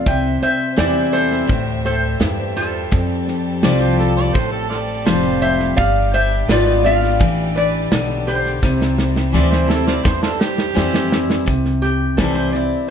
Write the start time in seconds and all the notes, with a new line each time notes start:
0.06 C2 C3 G3 C4 C5 E5 G5, kick, snare
0.42 C5 E5, muted upright bass stroke, snare
0.76 E2 E3 G3 C4 E4 G4 D5, snare, hi-hat pedal
1.13 A4 C5, snare
1.32 snare
1.47 D2 A2, kick, snare
1.85 A4 C5, snare
2.20 E2 G2, snare, hi-hat pedal
2.56 F4 A4, snare
2.91 F2 G4 A4, kick, snare
3.28 snare
3.63 C2 F3 G3 C4 F4 D5, snare, hi-hat pedal
3.82 C5
3.99 A4, snare
4.17 D5, snare
4.34 A1 A2 C5, kick, snare
4.52 A4
4.70 F4 A4 D5, snare
5.06 F1 F3 G3 C4 F4 C5, snare, hi-hat pedal
5.42 C5 E5, snare
5.60 snare
5.76 G1 G3 D4 D5 F5, kick, snare
6.14 C5 E5, snare
6.48 G#1 G3 B3 F4 B4 D5, snare, hi-hat pedal
6.84 B3 F4 D5 F5, snare
7.03 snare
7.19 A1 E3, kick, snare
7.56 B4 D5, snare
7.92 B1 D3, snare, hi-hat pedal
8.27 G4 C5, snare
8.46 snare
8.62 C2 C3 C4 E4 C5, kick, snare
8.81 snare
8.98 snare
9.16 snare
9.33 D2 E3 G3 C4 E4 D5, snare, hi-hat pedal
9.51 C5, snare
9.68 C4 E4 A4, snare
9.87 F4 A4 D5, snare
10.04 E2 G2 C5, kick, snare
10.23 D4 F4 A4, snare
10.40 G4, snare
10.58 snare
10.75 F2 E3 G3 C4 E4, snare, hi-hat pedal
10.94 snare
11.12 snare
11.30 snare
11.46 C2 C3, kick, snare
11.65 snare
11.82 G4, snare
12.17 E3 G3 C4 E4 A4, kick, snare, hi-hat pedal
12.35 C5
12.53 E4 D5, snare
12.57 C4